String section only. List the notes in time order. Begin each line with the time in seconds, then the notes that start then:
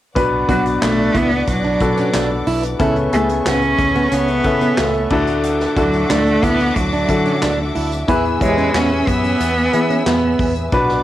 0.16 B4 D5 F#5 D6
2.80 E5 C#6
5.11 A4 F#5 D6
8.08 B4 G#5 E6
10.72 B4 D5 F#5 D6